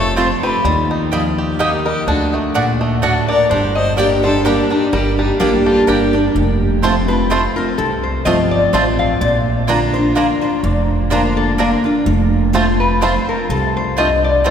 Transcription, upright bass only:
Already playing: F1
0.64 D#2
2.07 D2
3.50 G1
4.93 G1
5.41 A1
5.88 G1
6.35 F1
7.78 C2
8.25 G1
8.73 A1
9.21 A#1
10.63 F1
12.06 F1
13.49 C2

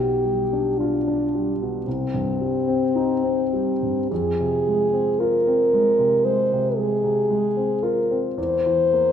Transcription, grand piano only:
Already playing: B1 B2
0.25 G3
0.53 D4
0.80 F4
1.08 D4
1.35 G3
1.62 B2
1.87 C2
2.14 G2
2.41 G3
2.68 C4
2.95 D#4
3.23 C4
3.53 G3
3.83 G2
4.12 F2
4.40 C3
4.67 G#3
4.93 C4
5.20 F4
5.47 C4
5.73 G#3
5.99 C3
6.25 G#3
6.52 C3
6.79 G#3
7.04 C3
7.30 G#3
7.57 C4
7.83 F4
8.11 C4
8.38 E2
8.66 E3
8.93 A#3

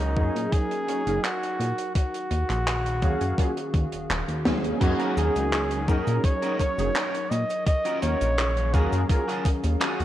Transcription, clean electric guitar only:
4.81 muted clean electric guitar stroke
5.00 C#4 D#4 F#4 A#4
5.88 C#4 D#4 F#4 A#4
6.42 C#4 D#4 F#4 A#4
6.78 muted clean electric guitar stroke
6.95 C#4 D#4 F#4 A#4
7.31 muted clean electric guitar stroke
7.67 muted clean electric guitar stroke
7.85 C#4 F4 F#4 A#4
8.73 C#4 F4 F#4 G#4
9.28 C#4 F4 F#4 G#4
9.64 muted clean electric guitar stroke
9.80 C#4 F4 F#4 G#4

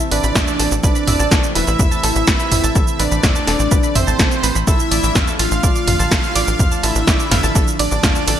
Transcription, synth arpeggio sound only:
0.11 B4 B5
0.24 B5
0.35 E5 E6
0.47 A5 A6
0.59 A4 A5
0.83 B4 B5
0.95 B5
1.07 E5 E6
1.19 A5 A6
1.31 A4 A5
1.55 B4 B5
1.67 B5
1.79 E5 E6
1.91 A5 A6
2.03 A4 A5
2.27 B4 B5
2.40 B5
2.52 E5 E6
2.64 A5 A6
2.75 A4 A5
2.99 B4 B5
3.11 B5
3.23 E5 E6
3.35 A5 A6
3.47 A4 A5
3.71 B4 B5
3.83 B5
3.95 E5 E6
4.07 A5 A6
4.19 A4 A5
4.43 B4 B5
4.55 B5
4.67 A4 A5
4.91 D5 D6
5.03 D6
5.15 F5 F6
5.27 A5 A6
5.39 A4 A5
5.63 D5 D6
5.75 D6
5.87 F5 F6
5.99 A5 A6
6.11 A4 A5
6.35 D5 D6
6.47 D6
6.59 F5 F6
6.71 A5 A6
6.83 A4 A5
7.07 D5 D6
7.19 D6
7.31 F5 F6
7.43 A5 A6
7.55 A4 A5
7.79 D5 D6
7.91 D6
8.03 F5 F6
8.15 A5 A6
8.28 A4 A5

